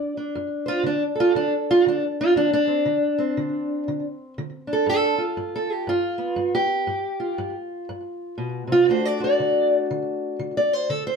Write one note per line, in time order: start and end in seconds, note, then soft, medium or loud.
0.00 0.31 F#2 medium
0.00 0.17 D4 medium
0.00 0.18 D5 loud
0.17 0.86 D4 soft
0.35 0.81 F#2 medium
0.66 0.85 F4 loud
0.66 0.86 C5 soft
0.83 1.30 D3 medium
0.83 1.02 D4 medium
1.15 2.84 A4 soft
1.20 1.36 F4 loud
1.35 1.81 D3 medium
1.35 1.52 D4 medium
1.71 1.86 F4 loud
1.86 2.32 D3 medium
1.86 2.04 D4 medium
2.21 2.37 F4 loud
2.36 2.82 D3 medium
2.36 2.52 D4 medium
2.53 4.04 D4 loud
2.67 2.84 C4 soft
2.85 3.32 D3 medium
3.18 4.85 C4 soft
3.37 3.83 D3 medium
3.88 4.33 D3 medium
4.38 4.83 D3 medium
4.67 5.18 D4 soft
4.73 4.88 A4 medium
4.86 5.33 G2 medium
4.86 5.21 A4 loud
5.18 5.89 F4 soft
5.37 5.83 G2 medium
5.56 5.72 A4 medium
5.72 5.88 G4 loud
5.87 6.33 G2 medium
5.87 6.55 F4 medium
6.18 6.85 B3 soft
6.36 6.83 G2 medium
6.55 7.55 G4 medium
6.87 7.33 G2 medium
7.20 8.71 F4 soft
7.38 7.84 G2 medium
7.89 8.35 G2 medium
8.38 8.67 B2 medium
8.67 8.88 C3 medium
8.72 8.88 F4 loud
8.88 9.34 D3 medium
8.88 11.16 A3 medium
8.88 10.87 D4 soft
8.88 9.20 F#4 medium
8.88 9.05 C5 medium
9.05 9.22 D5 medium
9.20 10.87 F#4 medium
9.20 9.73 D5 medium
9.40 9.85 D3 medium
9.91 10.36 D3 medium
10.39 10.85 D3 medium
10.57 10.73 D5 loud
10.73 10.90 C5 loud
10.90 11.16 D3 medium
10.90 11.06 A4 medium
11.07 11.16 C5 medium